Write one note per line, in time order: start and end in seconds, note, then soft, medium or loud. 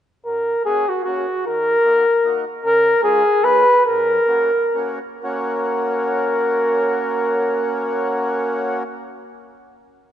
0.25 0.56 F#2 soft
0.25 0.63 A#4 medium
0.65 0.85 A#3 soft
0.65 0.86 C#4 soft
0.65 0.86 F#4 soft
0.65 0.90 G#4 medium
0.89 1.04 F#4 medium
1.05 1.25 A#3 medium
1.05 1.26 C#4 soft
1.05 1.42 F#4 medium
1.05 1.26 F#4 medium
1.47 1.76 D#3 medium
1.47 2.43 A#4 medium
1.84 2.04 A#3 medium
1.84 2.05 D#4 soft
1.84 2.05 F#4 medium
2.24 2.44 A#3 medium
2.24 2.44 D#4 medium
2.24 2.45 F#4 medium
2.64 2.95 C#3 medium
2.64 3.01 A#4 loud
3.02 3.22 G#3 medium
3.02 3.23 C#4 soft
3.02 3.23 F4 medium
3.02 3.46 G#4 medium
3.43 3.64 G#3 medium
3.43 3.64 C#4 medium
3.43 3.64 F4 medium
3.43 3.85 B4 loud
3.85 4.18 F#2 medium
3.85 4.98 A#4 medium
4.27 4.50 A#3 soft
4.27 4.51 C#4 soft
4.27 4.51 F#4 medium
4.74 4.99 A#3 medium
4.74 4.99 C#4 medium
4.74 5.00 F#4 medium
5.23 8.84 A#3 medium
5.23 8.83 C#4 medium
5.23 8.83 F#4 medium
5.23 8.82 A#4 medium